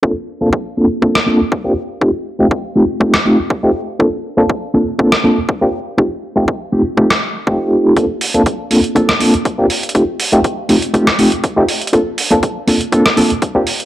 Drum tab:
HH |--------------------------------|--------------------------------|--------------------------------|--------------------------------|
SD |------------------r-------------|------------------r-------------|------------------r-------------|------------------r-------------|
BD |o-------o-------o-------o-------|o-------o-------o-------o-------|o-------o-------o-------o-------|o-------o-------o-------o-------|

HH |x---o-x-x---o-x-x---o-x-x---o-xx|x---o-x-x---o-x-x---o-x-x---o-xx|x---o-x-x---o-x-x---o-x-x---o-x-|
SD |------------------r-------------|------------------r-------------|------------------r-------------|
BD |o-------o-------o-------o-------|o-------o-------o-------o-------|o-------o-------o-------o-------|